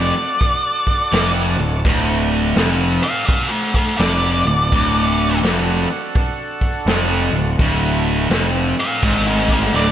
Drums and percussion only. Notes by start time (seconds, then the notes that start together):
0.15 open hi-hat
0.41 kick, open hi-hat
0.87 kick, open hi-hat
1.13 snare, open hi-hat
1.59 open hi-hat
1.85 kick, open hi-hat
2.31 open hi-hat
2.56 snare, open hi-hat
3.02 open hi-hat
3.29 kick, open hi-hat
3.74 kick, open hi-hat
4.00 snare, open hi-hat
4.46 open hi-hat
4.72 kick, open hi-hat
5.18 open hi-hat
5.44 snare, open hi-hat
5.90 open hi-hat
6.15 kick, open hi-hat
6.61 kick, open hi-hat
6.87 snare, open hi-hat
7.34 open hi-hat
7.59 kick, open hi-hat
8.04 open hi-hat
8.31 snare, open hi-hat
8.77 open hi-hat
9.03 kick, open hi-hat
9.48 kick, open hi-hat
9.62 snare
9.75 snare